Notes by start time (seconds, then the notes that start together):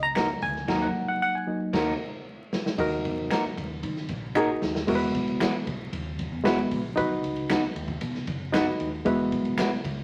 Already playing: C#2
0.03 A#5
0.15 A#3 D#4 F#4 A#4, finger snap, snare, closed hi-hat
0.42 D2 G#5, kick, closed hi-hat
0.56 snare
0.68 D#2 F#3 A#3 D#4 F#4 A#4, kick, snare, crash
0.82 F#5
1.08 F#5
1.22 F#5
1.35 G#5
1.47 F#3 A#3 D#4
1.73 D#2 A#3 D#4 F#4 A#4, kick, snare, crash
2.53 snare
2.66 snare
2.78 D#2 D#4 F#4 A#4, kick, crash
3.05 E2, kick, ride
3.30 A#3 D#4 F#4 A#4, finger snap, snare, ride
3.44 muted picked electric bass stroke
3.57 D#2, kick, ride
3.83 D#3, kick, ride
3.96 snare
4.08 A#1, kick, ride
4.35 A#3 D#4 F#4 G#4 A#4, finger snap
4.62 D#2, snare
4.75 snare
4.87 E2 G#3 B3 E4 F#4 A#4, kick, crash
4.95 B4
5.15 B1, kick, ride
5.28 ride
5.40 E3 G#3 E4 F#4 B4, finger snap, snare, ride
5.67 B1, kick, ride
5.93 D#2, kick, ride
6.19 kick, ride
6.32 E2
6.43 G#3 B3 E4 F#4 B4, finger snap, snare, ride
6.58 ride
6.71 A#1, kick, open hi-hat, ride
6.96 B1 D#4 F#4 B4, kick, hi-hat pedal, ride
7.23 C#2, ride
7.36 ride
7.50 B3 D#4 F#4 B4, finger snap, snare, ride
7.75 D#2, ride
7.88 kick
8.01 B2, kick, ride
8.15 snare
8.27 F#1, kick, ride
8.52 B3 D#4 F#4 B4, finger snap, snare, ride
8.80 D#2, ride
9.05 E2 G#3 B3 E4 F#4 B4, kick, ride
9.32 B1, kick, ride
9.45 ride
9.58 G#3 E4 F#4 B4, finger snap, snare, ride
9.84 C#2, kick, ride